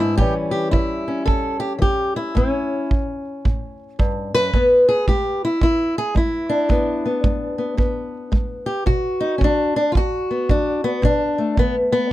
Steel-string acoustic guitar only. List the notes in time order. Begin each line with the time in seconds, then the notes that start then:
Already playing: B3 D4
0.00 G#2 E4
0.17 A2 E3 G3 C#4 G4
0.51 G4
0.71 E3 E4
1.08 C#4
1.26 E2 A4
1.60 G4
1.79 E3 G4
2.16 E4
2.35 A2 C#4
3.45 A2
3.99 G2
4.35 F#2 B4
4.54 E2 B3
4.89 G#4
5.08 G#3 G4
5.45 E4
5.61 E2 E4
5.98 G#4
6.15 G#3 E4
6.49 D4
6.69 E2 B3
7.06 B3
7.24 G#3
7.58 B3
7.77 E2 B3
8.32 G#3
8.66 G4
8.86 B2 F#4
9.21 D#4
9.38 C#4
9.42 D#3 D4
9.76 D4
9.92 F4
9.97 F#2 F#4
10.31 B3
10.50 D#3 D4
10.84 B3
11.02 B2 D4
11.38 A3
11.58 D#3 B3
11.92 B3